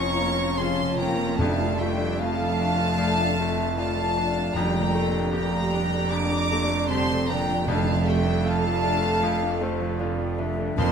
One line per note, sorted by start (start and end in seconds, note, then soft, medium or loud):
0.00 4.52 F1 medium
0.00 1.38 F2 medium
0.00 1.41 F2 medium
0.00 4.52 F2 medium
0.00 0.45 F3 medium
0.00 0.59 F3 medium
0.00 0.20 C#4 medium
0.00 0.22 C#4 medium
0.00 0.40 C#4 medium
0.00 0.59 C#4 loud
0.00 0.20 F4 medium
0.00 0.61 F4 medium
0.00 4.52 F4 medium
0.00 1.35 C#5 medium
0.00 1.43 C#5 medium
0.00 0.60 A#5 loud
0.00 0.60 C#6 loud
0.20 0.40 A#3 medium
0.20 0.84 C#4 medium
0.20 2.18 F4 medium
0.40 0.60 F3 medium
0.57 0.80 C#3 medium
0.57 0.98 F3 medium
0.57 1.00 C#4 medium
0.57 1.24 F4 medium
0.57 0.99 A5 loud
0.57 0.98 C6 loud
0.80 1.00 F3 medium
0.99 1.59 F3 medium
0.99 1.19 A#3 medium
0.99 1.39 A#3 medium
0.99 1.40 C#4 medium
0.99 1.39 G5 medium
0.99 1.38 A#5 loud
1.19 1.39 C#4 medium
1.19 1.42 C#4 medium
1.39 2.54 F2 loud
1.39 4.54 F2 medium
1.39 2.95 F2 medium
1.39 1.57 D3 medium
1.39 1.79 A3 loud
1.39 2.20 D5 medium
1.39 1.78 F5 loud
1.39 1.79 A5 medium
1.59 1.79 F3 medium
1.59 3.76 F3 medium
1.78 2.19 G3 medium
1.78 1.98 A3 medium
1.78 3.96 A3 medium
1.78 2.44 A3 medium
1.78 2.19 E5 medium
1.78 2.19 G5 loud
1.98 2.18 D4 medium
1.98 3.56 D4 medium
2.19 2.39 A3 medium
2.19 3.75 A3 loud
2.19 3.36 F4 medium
2.19 2.83 F4 medium
2.19 3.77 F5 loud
2.19 3.00 F5 medium
2.19 3.76 A5 loud
2.39 2.58 F3 medium
2.58 2.78 D3 medium
2.58 3.23 D4 medium
2.58 2.96 D5 medium
2.78 2.98 F3 medium
2.78 4.59 A5 medium
2.97 4.52 F2 medium
2.97 3.16 A3 medium
2.97 5.72 D5 medium
2.97 3.41 D5 medium
3.19 3.38 D4 medium
3.37 3.57 A3 medium
3.37 4.02 A3 medium
3.37 4.58 F4 medium
3.37 3.81 E5 medium
3.57 3.77 F3 medium
3.57 5.13 D4 medium
3.76 3.97 D3 medium
3.76 4.15 F3 medium
3.76 4.54 A3 medium
3.76 4.41 F4 medium
3.76 5.07 D5 medium
3.76 4.55 F5 medium
3.76 4.54 A5 loud
3.97 4.18 F3 medium
3.97 4.35 A3 medium
4.16 4.59 F3 medium
4.16 4.37 A3 medium
4.16 4.56 D4 medium
4.37 4.94 A3 medium
4.37 4.57 D4 medium
4.54 10.75 F1 medium
4.54 5.69 F2 loud
4.54 7.67 F2 medium
4.54 10.75 F2 medium
4.54 6.08 F2 medium
4.54 5.31 A#2 loud
4.54 5.32 G5 loud
4.54 5.32 A#5 medium
4.58 4.75 G3 medium
4.58 7.65 G4 medium
4.76 6.89 D3 medium
4.76 4.95 A3 medium
4.93 5.57 A3 medium
4.93 7.09 A3 medium
4.98 5.16 A#3 medium
5.14 6.70 D4 medium
5.14 5.35 D4 medium
5.32 6.10 A#2 medium
5.32 5.54 A#3 medium
5.32 5.96 G4 medium
5.32 6.50 G4 medium
5.32 8.97 D5 medium
5.32 6.10 G5 medium
5.32 6.10 A#5 loud
5.55 5.74 A3 medium
5.73 5.93 G3 medium
5.73 6.36 D4 medium
5.73 6.12 D5 medium
5.93 6.13 A3 medium
5.93 7.71 G5 medium
6.11 7.64 F2 medium
6.11 6.88 D4 medium
6.11 8.84 D5 medium
6.11 6.89 A#5 loud
6.11 6.90 D6 loud
6.15 6.32 A#3 medium
6.33 6.52 D4 medium
6.51 7.14 A3 medium
6.51 6.71 A#3 medium
6.51 7.71 G4 medium
6.71 6.91 A3 medium
6.71 8.25 D4 medium
6.89 7.28 D3 medium
6.89 7.10 G3 medium
6.89 7.28 C4 medium
6.89 7.53 G4 medium
6.89 7.28 A5 loud
6.89 7.28 C6 loud
7.11 7.48 A3 medium
7.11 7.30 A3 medium
7.28 7.68 A#2 loud
7.28 7.71 D3 medium
7.28 7.49 A#3 medium
7.28 7.68 D4 medium
7.28 7.67 G5 loud
7.28 7.68 A#5 loud
7.50 8.06 A3 medium
7.50 7.69 D4 medium
7.66 8.79 F2 loud
7.66 9.19 F2 medium
7.66 10.78 F2 medium
7.66 7.86 D3 loud
7.66 8.06 A3 loud
7.66 10.75 A4 medium
7.66 8.07 F5 loud
7.70 8.07 A5 loud
7.87 8.07 F3 medium
7.87 10.01 F3 medium
8.05 8.44 G3 medium
8.05 8.25 A3 medium
8.05 10.20 A3 medium
8.05 8.69 A3 medium
8.05 8.45 E5 medium
8.05 8.46 G5 loud
8.26 8.45 D4 medium
8.26 9.80 D4 medium
8.44 10.00 A3 loud
8.44 8.65 A3 medium
8.44 9.07 F4 medium
8.44 9.62 F4 medium
8.44 10.00 F5 loud
8.44 10.01 A5 loud
8.65 8.84 F3 medium
8.65 9.43 A4 medium
8.83 9.03 D3 medium
8.83 9.46 D4 medium
8.83 9.23 D5 medium
9.03 9.23 F3 medium
9.22 10.75 F2 medium
9.22 9.41 A3 medium
9.22 10.83 D5 medium
9.22 9.63 F5 loud
9.43 9.62 D4 medium
9.43 10.83 A4 medium
9.61 10.24 A3 medium
9.61 9.81 A3 medium
9.61 10.92 F4 medium
9.61 10.01 C5 medium
9.81 10.00 F3 medium
9.81 10.82 D4 medium
10.00 10.20 D3 medium
10.00 10.39 F3 medium
10.00 10.63 F4 medium
10.00 10.40 D5 medium
10.20 10.39 F3 medium
10.20 10.58 A3 medium
10.39 10.92 F3 medium
10.39 10.59 A3 medium
10.39 10.79 D4 medium
10.39 10.81 E5 medium
10.58 10.82 A3 medium
10.58 10.78 D4 medium
10.77 10.92 F1 medium
10.77 10.92 F2 medium
10.77 10.92 F2 loud
10.77 10.92 F2 medium
10.77 10.92 A#3 medium
10.77 10.92 C4 loud
10.77 10.92 A#4 medium
10.77 10.92 F5 loud
10.77 10.92 A5 loud
10.77 10.92 C6 loud